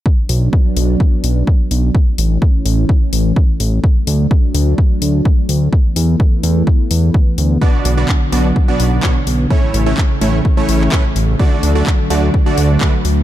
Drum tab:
HH |--o---o---o---o-|--o---o---o---o-|--o---o---o---o-|--o---o---o---o-|
CP |----------------|----------------|----------------|----------------|
BD |o---o---o---o---|o---o---o---o---|o---o---o---o---|o---o---o---o---|

HH |--o---o---o---o-|--o---o---o---o-|--o---o---o---o-|
CP |----x-------x---|----x------xx---|----x-------x---|
BD |o---o---o---o---|o---o---o---o---|o---o---o---o---|